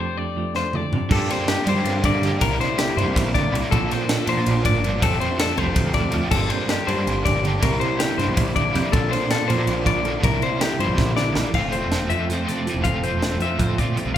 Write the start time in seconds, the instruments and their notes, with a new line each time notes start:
Already playing: clean electric guitar F2 F3 A3 D4
0.00 clean electric guitar G4 C5
0.17 clean electric guitar D4 D5
0.36 clean electric guitar F3 A3
0.55 clean electric guitar F4 C5, snare
0.66 clean electric guitar G4
0.73 clean electric guitar D4 D5, mid tom
0.93 clean electric guitar C3, floor tom
1.10 overdriven electric guitar G2 D3 G3 A#3 D4 G4, picked electric bass G2, clean electric guitar G2 G3 A4, kick, crash
1.15 clean electric guitar C4 F4
1.30 clean electric guitar C4 C5, snare, ride
1.48 clean electric guitar G4, snare, ride
1.65 overdriven electric guitar G2 D3 G3 A#3 D4 G4, picked electric bass G3, clean electric guitar G3 C5, ride
1.76 picked electric bass G3
1.84 picked electric bass G2, clean electric guitar C4, ride
2.04 picked electric bass G2, clean electric guitar D3 D5, kick, ride
2.22 overdriven electric guitar G2 D3 G3 A#3 D4 G4, clean electric guitar G4, snare, ride
2.40 picked electric bass C2, overdriven electric guitar C3 G3 A#3 E4, clean electric guitar C3 A#4, kick, ride
2.61 clean electric guitar E4 C5, snare, ride
2.78 clean electric guitar G4, snare, ride
2.97 picked electric bass G2, overdriven electric guitar C3 G3 A#3 E4, clean electric guitar G3 D4 C5, ride
3.08 picked electric bass C2
3.16 picked electric bass A#1, clean electric guitar E3, kick, snare, ride
3.34 clean electric guitar D3 D5, kick, snare, ride
3.52 picked electric bass C2, clean electric guitar C3, overdriven electric guitar G3 A#3 E4, ride
3.56 overdriven electric guitar C3
3.71 picked electric bass A#1, overdriven electric guitar A#2 F3 A#3 D4, clean electric guitar A#2 A4, kick, ride
3.91 clean electric guitar C4 C5, snare, ride
4.09 clean electric guitar A4, snare, ride
4.26 picked electric bass A#2, clean electric guitar F3 C5, overdriven electric guitar F3 A#3 D4, ride
4.31 overdriven electric guitar A#2
4.37 picked electric bass A#2
4.46 picked electric bass A#1, clean electric guitar A#2, ride
4.65 picked electric bass G1, clean electric guitar A2 D5, kick, ride
4.82 clean electric guitar G2, overdriven electric guitar A#2 F3 A#3, ride
4.86 overdriven electric guitar D4
4.99 picked electric bass F1, overdriven electric guitar F2 C3 F3 A3, clean electric guitar F2 A4, kick, ride
5.04 overdriven electric guitar C4
5.20 clean electric guitar C4 C5, ride
5.31 clean electric guitar D4
5.39 clean electric guitar A4, snare, ride
5.56 picked electric bass C2, overdriven electric guitar F2 C3 F3 A3 C4, clean electric guitar F3 A3 C5, ride
5.66 picked electric bass F1
5.76 picked electric bass D2, kick, ride
5.94 clean electric guitar D5, kick, snare, ride
6.11 picked electric bass D2, clean electric guitar F2, overdriven electric guitar F2 C3 F3 A3 C4, ride
6.31 picked electric bass G1, overdriven electric guitar G2 D3 G3 A#3 D4, clean electric guitar G2 G3 A4, kick, crash
6.36 clean electric guitar C4 F4
6.50 clean electric guitar C4 C5, ride
6.69 clean electric guitar G4, snare, ride
6.85 picked electric bass G2, overdriven electric guitar D3 G3 A#3 D4, clean electric guitar G3 C5, ride
6.89 overdriven electric guitar G2
6.97 picked electric bass G2
7.07 picked electric bass G1, clean electric guitar C4, ride
7.25 picked electric bass G1, clean electric guitar D3 D5, kick, ride
7.43 overdriven electric guitar G2 D3 G3 A#3 D4, clean electric guitar G4, ride
7.62 picked electric bass C2, overdriven electric guitar C3 G3 A#3 E4, clean electric guitar C3 A#4, kick, ride
7.80 clean electric guitar E4 C5, ride
7.99 clean electric guitar G4, snare, ride
8.17 picked electric bass G2, overdriven electric guitar C3 G3 A#3, clean electric guitar G3 D4 C5, snare, ride
8.21 overdriven electric guitar E4
8.28 picked electric bass C2
8.37 picked electric bass A#1, clean electric guitar E3, kick, ride
8.56 clean electric guitar D3 D5, kick, ride
8.73 picked electric bass F2, clean electric guitar C3, overdriven electric guitar G3 A#3 E4, snare, ride
8.78 overdriven electric guitar C3
8.92 picked electric bass A#1, overdriven electric guitar A#2 D3 F3 A#3 D4, clean electric guitar A#2 A4, kick, ride
9.11 clean electric guitar C4 C5, snare, ride
9.30 clean electric guitar A4, snare, ride
9.48 picked electric bass A#2, clean electric guitar F3 C5, overdriven electric guitar F3 A#3 D4, ride
9.52 overdriven electric guitar A#2 D3
9.59 picked electric bass A#2
9.67 picked electric bass A#1, clean electric guitar C4, ride
9.86 picked electric bass A#1, clean electric guitar F3 D5, kick, ride
10.03 overdriven electric guitar A#2 D3 F3 A#3, clean electric guitar A4, ride
10.07 overdriven electric guitar D4
10.20 picked electric bass C2, overdriven electric guitar C3 G3 A#3 E4, clean electric guitar C3 A#4, kick, ride
10.42 clean electric guitar C5, ride
10.61 clean electric guitar G4, snare, ride
10.78 picked electric bass G2, overdriven electric guitar C3 G3 A#3, clean electric guitar F3 C4 C5, ride
10.82 overdriven electric guitar E4
10.88 picked electric bass C2
10.98 picked electric bass A#1, clean electric guitar C3, kick, snare
11.16 clean electric guitar D3 D5, snare
11.35 picked electric bass A#1, overdriven electric guitar C3 G3 A#3 E4, clean electric guitar E3, snare
11.54 picked electric bass F1, clean electric guitar F2 A3 A4 F5, overdriven electric guitar F3 A3 C4 F4, kick, crash
11.72 clean electric guitar A3 C5, overdriven electric guitar F4, closed hi-hat
11.76 overdriven electric guitar A3 C4
11.83 picked electric bass E1
11.91 overdriven electric guitar F3 A3 C4 F4, clean electric guitar A4, snare, closed hi-hat
12.10 picked electric bass F2, clean electric guitar F3 E5, overdriven electric guitar C4 F4, closed hi-hat
12.14 overdriven electric guitar F3 A3
12.29 picked electric bass F2, overdriven electric guitar F3 A3 C4, clean electric guitar A3 C5, snare, closed hi-hat
12.34 overdriven electric guitar F4
12.47 clean electric guitar C3 A4 D5, overdriven electric guitar F4, snare, closed hi-hat
12.52 overdriven electric guitar A3 C4
12.67 overdriven electric guitar F3 A3 C4 F4, clean electric guitar E4, closed hi-hat
12.74 picked electric bass E1
12.84 picked electric bass F1, clean electric guitar F2 A3 F5, overdriven electric guitar F3 A3, kick, closed hi-hat
12.88 overdriven electric guitar C4 F4, clean electric guitar A4
13.03 clean electric guitar A3 C5, overdriven electric guitar A3 C4 F4, closed hi-hat
13.11 picked electric bass E1
13.22 overdriven electric guitar F3 A3 C4, clean electric guitar A4, snare, closed hi-hat
13.27 overdriven electric guitar F4
13.40 picked electric bass F2, clean electric guitar F3 E5, overdriven electric guitar C4 F4, closed hi-hat
13.44 overdriven electric guitar F3 A3
13.59 picked electric bass F2, clean electric guitar A2 C5, overdriven electric guitar F3 A3, kick, closed hi-hat
13.63 overdriven electric guitar C4 F4
13.78 clean electric guitar A#2 D5, overdriven electric guitar C4 F4, kick, closed hi-hat
13.83 overdriven electric guitar A3
13.96 clean electric guitar C3, overdriven electric guitar F3 A3 C4, closed hi-hat
14.01 overdriven electric guitar F4
14.06 picked electric bass C2
14.14 clean electric guitar F5